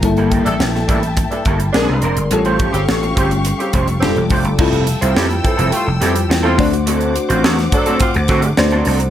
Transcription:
<<
  \new Staff \with { instrumentName = "String section" } { \time 4/4 \key f \major \tempo 4 = 105 <e'' g'' a''>2. <aes' d'' c'''>4 | <g' eis'' cis'''>2. <a' g'' d'''>4 | <a' g'' e'''>2.~ <a' g'' e'''>8 <c'' fis'' d'''>8~ | <c'' fis'' d'''>1 | }
  \new Staff \with { instrumentName = "Clean electric guitar" } { \time 4/4 \key f \major r16 <g bes e' a'>16 <g bes e' a'>16 r8. <g bes e' a'>16 r8. <g bes e' a'>16 r8. <aes c' d' bes'>16 r16 | r16 <a cis' g' bis'>16 <a cis' g' bis'>16 r8. <a cis' g' bis'>16 r8. <a cis' g' bis'>16 r8. <a d' g' c''>16 r16 | <g c' e' a'>8 r16 <g c' e' c''>16 <g c' e' a'>16 r8 <g c' e' a'>16 r8 <g c' e' a'>16 r8 <g c' e' a'>16 <a c' fis' a'>16 r16 | <a c' fis' a'>8 r16 <a c' fis' c''>16 <a c' fis' a'>16 r8 <a c' fis' a'>16 r8 <a c' fis' a'>16 r8 <fis c' d' a'>16 <fis c' d' a'>16 r16 | }
  \new Staff \with { instrumentName = "FM electric piano" } { \time 4/4 \key f \major <g bes e' a'>2. <aes c' d' bes'>4 | <g bis cis' eis' a'>2. <g d' f' a'>4 | <g e' f' a'>2.~ <g e' f' a'>8 <a d' fis' c''>8~ | <a d' fis' c''>2. <a d' fis' c''>4 | }
  \new Staff \with { instrumentName = "Horn section" } { \time 4/4 \key f \major r8. <e d' a'>16 r8 <e d' a'>16 r8 <e d' a'>16 r8 <f d' aes'>8 r8 | r8. <cis bis g'>16 r8 <cis bis g'>16 r8 <cis bis g'>16 r8 <d c' g'>8 r8 | r8. <c a f'>16 <e c' g'>16 r16 <e c' a'>8 <c a f'>16 r16 <e c' g'>8 r16 <c' f'>8 r16 | r8. <c' f'>16 <d c' fis'>16 r16 <fis d' a'>8 <c' f'>16 r16 <d c' fis'>8 r4 | }
  \new Staff \with { instrumentName = "Slap bass" } { \clef bass \time 4/4 \key f \major g,,8. a,,16 bes,,8 a,,8. r16 g,,8 bes,,16 c,16 f,,16 g,,16 | a,,8. g,,16 a,,8 g,,8. r16 eis,,8 f,,16 e,,16 f,,16 g,,16 | f,,8. c,16 f,8 r16 f,,16 r16 f,,16 f,8 e,8 d,8~ | d,8. a,,16 e,8 r8. d,16 d8 d,8 c,8 | }
  \new DrumStaff \with { instrumentName = "Drums" } \drummode { \time 4/4 <hh bd>16 hh16 <hh bd>16 hh16 sn16 sn16 <hh bd>16 hh16 <hh bd>16 hh16 <hh bd>16 hh16 sn8 hh16 hh16 | hh16 hh16 <hh bd>16 hh16 sn16 hh16 <hh bd>16 hh16 hh16 hh16 <hh bd>16 hh16 sn16 hh16 <hho bd>16 hh16 | <cymc bd>16 hh16 hh16 hh16 sn16 hh16 <hh bd>16 hh16 hh8 <hh sn>16 hh16 sn8 <hho bd>16 hh16 | hh16 hh16 hh16 hh16 sn16 <hh sn>16 <hh bd>16 hh16 <hh bd>16 hh16 <hh bd sn>16 hh16 sn16 hh16 hho16 hh16 | }
>>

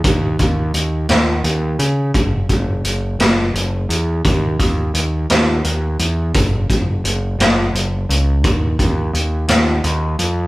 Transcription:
<<
  \new Staff \with { instrumentName = "Picked electric bass" } { \clef bass \time 6/8 \key cis \dorian \tempo 4. = 57 dis,8 dis,8 dis,8 dis,8 dis,8 cis8 | fis,,8 fis,,8 fis,,8 fis,,8 fis,,8 e,8 | dis,8 dis,8 dis,8 dis,8 dis,8 e,8 | fis,,8 fis,,8 fis,,8 fis,,8 fis,,8 cis,8 |
dis,8 dis,8 dis,8 dis,8 dis,8 eis,8 | }
  \new DrumStaff \with { instrumentName = "Drums" } \drummode { \time 6/8 <hh bd>8 <hh bd>8 hh8 <hh sn>8 hh8 hh8 | <hh bd>8 <hh bd>8 hh8 <hh sn>8 hh8 hh8 | <hh bd>8 <hh bd>8 hh8 <hh sn>8 hh8 hh8 | <hh bd>8 <hh bd>8 hh8 <hh sn>8 hh8 hh8 |
<hh bd>8 <hh bd>8 hh8 <hh sn>8 hh8 hh8 | }
>>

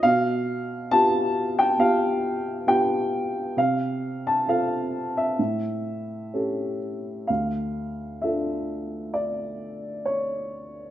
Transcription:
\new Staff \with { instrumentName = "Upright piano" } { \time 4/4 \key a \phrygian \tempo 4 = 66 << { f''4 a''8. g''16 f''4 g''4 | f''8. a''16 f''8. e''4.~ e''16 r8 | \key d \minor f''4 e''4 d''4 cis''4 | } \\ { b,4 <b f' g'>4 <b f' g'>4 <b f' g'>4 | c4 <c' f' a'>4 a,4 <cis' g' a'>4 | d,4 <d' f' a'>2. | } >> }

